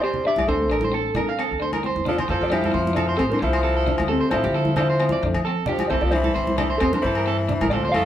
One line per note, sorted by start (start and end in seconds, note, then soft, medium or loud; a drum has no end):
0.00 0.11 C3 medium
0.00 0.17 C4 medium
0.00 0.24 G4 medium
0.00 0.23 D5 medium
0.04 0.25 C5 medium
0.14 low conga medium
0.25 0.38 D4 medium
0.25 0.47 G4 medium
0.25 0.38 D5 medium
0.25 0.47 E5 medium
0.36 0.46 C2 medium
0.36 0.48 D5 medium
0.36 high conga medium
0.36 low agogo medium
0.48 0.70 D2 medium
0.48 0.62 C4 medium
0.48 1.80 D4 medium
0.48 1.80 A4 medium
0.48 0.70 C5 medium
0.70 1.07 A1 medium
0.70 0.83 D4 medium
0.70 0.83 A#4 medium
0.70 low agogo medium
0.81 0.93 C5 medium
0.81 high conga medium
0.92 1.05 C4 medium
0.92 1.15 A4 medium
1.15 1.44 C3 medium
1.15 1.28 D4 medium
1.15 1.28 A#4 medium
1.15 high conga medium
1.15 low conga medium
1.15 low agogo medium
1.29 1.38 F5 medium
1.39 1.52 C4 medium
1.39 1.61 A4 medium
1.39 low agogo medium
1.51 1.88 D2 medium
1.60 1.73 D4 medium
1.60 1.73 C5 medium
1.73 1.83 A#4 medium
1.73 high conga soft
1.73 low agogo medium
1.83 1.97 C4 medium
1.83 2.06 C5 medium
1.83 high conga soft
1.96 2.14 E2 medium
1.96 high conga medium
2.05 2.18 F3 medium
2.05 2.19 D4 medium
2.05 2.19 A4 medium
2.05 2.15 D5 medium
2.05 low conga medium
2.11 2.16 F4 medium
2.18 2.29 C5 medium
2.18 low conga medium
2.18 low agogo medium
2.28 2.39 F2 medium
2.28 2.40 F3 medium
2.28 2.41 F4 medium
2.28 2.51 A4 medium
2.28 2.42 C5 medium
2.28 muted clean electric guitar stroke medium
2.40 2.68 F2 medium
2.40 2.50 F3 medium
2.40 2.52 F4 medium
2.40 2.52 D5 medium
2.50 3.16 F3 medium
2.50 2.64 D4 medium
2.50 3.16 E4 medium
2.50 2.64 G4 medium
2.50 3.17 C5 medium
2.50 high conga medium
2.50 low agogo medium
2.64 2.74 A4 medium
2.64 high conga medium
2.72 3.11 F2 medium
2.72 2.86 C4 medium
2.72 2.95 C5 medium
2.87 high conga medium
2.93 3.07 D4 medium
2.93 3.08 A4 medium
2.93 low conga medium
2.93 low agogo medium
3.09 3.19 C5 medium
3.17 3.29 A2 medium
3.17 3.24 C3 medium
3.17 3.31 C4 medium
3.17 3.24 C4 medium
3.17 3.22 A4 medium
3.17 3.31 C5 medium
3.17 low agogo medium
3.30 3.43 D3 medium
3.30 3.42 D4 medium
3.30 3.41 A#4 medium
3.30 3.42 C5 medium
3.30 high conga medium
3.39 3.89 C2 medium
3.39 4.09 F3 medium
3.39 3.54 A4 medium
3.39 4.08 C5 medium
3.39 muted clean electric guitar stroke medium
3.43 4.06 E4 medium
3.53 3.63 C5 medium
3.53 low agogo medium
3.63 3.76 A4 medium
3.63 muted clean electric guitar stroke medium
3.77 3.98 A4 medium
3.86 4.00 D4 medium
3.86 low conga medium
3.98 4.18 D2 medium
3.98 muted clean electric guitar stroke medium
3.98 high conga medium
3.98 low agogo medium
4.08 4.30 C3 medium
4.08 4.22 C4 medium
4.08 4.32 C4 medium
4.08 4.20 A4 medium
4.08 4.30 A4 medium
4.21 4.31 C5 medium
4.30 4.42 A2 medium
4.30 4.74 F3 medium
4.30 4.45 D4 medium
4.30 4.75 E4 medium
4.30 4.43 A4 medium
4.30 4.75 C5 medium
4.30 high conga medium
4.30 low agogo medium
4.44 5.09 D3 medium
4.44 4.54 G4 medium
4.44 high conga medium
4.54 4.68 C4 medium
4.54 4.75 A4 medium
4.65 high conga medium
4.76 5.41 F3 medium
4.76 4.91 D4 medium
4.76 5.42 E4 medium
4.76 4.88 A4 medium
4.76 5.41 C5 medium
4.76 low conga medium
4.76 low agogo medium
4.90 5.11 C5 medium
5.00 5.14 C4 medium
5.00 low agogo medium
5.09 5.22 D5 medium
5.09 high conga medium
5.23 5.33 F2 medium
5.23 5.36 D4 medium
5.34 5.53 F3 medium
5.34 low agogo medium
5.45 5.60 C4 medium
5.45 5.66 A4 medium
5.66 5.90 F3 medium
5.66 5.81 D4 medium
5.66 5.89 F4 medium
5.66 5.90 G4 medium
5.66 5.90 D5 medium
5.66 low conga medium
5.79 high conga medium
5.79 low agogo medium
5.90 6.00 C2 medium
5.90 6.02 E3 medium
5.90 6.04 C4 medium
5.90 6.01 E4 medium
5.90 6.12 A4 medium
5.90 6.01 C5 medium
6.01 6.29 C2 medium
6.01 6.13 F4 medium
6.01 6.12 D5 medium
6.05 6.14 F3 medium
6.11 6.78 E3 medium
6.11 6.26 D4 medium
6.11 6.77 E4 medium
6.11 6.78 C5 medium
6.11 high conga medium
6.11 low agogo medium
6.24 6.34 A4 medium
6.24 high conga medium
6.35 6.73 C2 medium
6.35 6.49 C4 medium
6.35 6.57 C5 medium
6.47 high conga medium
6.58 6.71 D4 medium
6.58 6.70 A4 medium
6.58 low conga medium
6.58 low agogo medium
6.70 6.80 C5 medium
6.78 6.91 E2 medium
6.78 6.93 C3 medium
6.78 6.94 C4 medium
6.78 6.92 C4 medium
6.78 6.93 A4 medium
6.78 low agogo medium
6.82 6.93 C5 medium
6.92 7.01 D3 medium
6.92 7.04 D4 medium
6.92 7.03 A#4 medium
6.92 7.04 C5 medium
6.92 high conga medium
7.01 7.51 G2 medium
7.01 7.66 E3 medium
7.01 7.73 C5 medium
7.06 7.68 E4 medium
7.06 7.16 A4 medium
7.15 7.27 A#4 medium
7.15 low agogo medium
7.26 7.39 C4 medium
7.26 7.38 A4 medium
7.39 muted clean electric guitar stroke medium
7.49 7.62 D4 medium
7.49 low conga medium
7.61 7.69 A1 medium
7.61 7.72 A#4 medium
7.61 high conga medium
7.61 low agogo medium
7.70 7.90 D2 loud
7.70 7.92 F3 medium
7.70 7.85 C4 medium
7.70 7.93 F4 medium
7.70 7.84 A4 medium
7.70 7.91 D5 loud
7.85 7.94 C5 medium
7.92 8.04 F2 medium
7.92 8.05 A3 medium
7.92 8.05 A4 medium
7.92 8.05 F5 loud
7.92 muted clean electric guitar stroke medium
7.92 high conga medium
7.92 low agogo medium
7.96 8.05 A4 medium